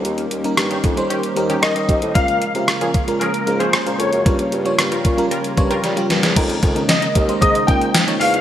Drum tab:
CC |----------------|----------------|----------------|x---------------|
HH |xxxxxxxxxxxxxxxx|xxxxxxxxxxxxxxxx|xxxxxxxxxxxxxxxx|xxxxxxxxxxxxxxox|
TB |----------------|----------------|----------------|----x-------x---|
SD |----r-------r---|----r-------r---|----r-------o-oo|----o-------o---|
BD |------o-------o-|o-----o---------|o-----o---o-----|o-o---o-o-o-----|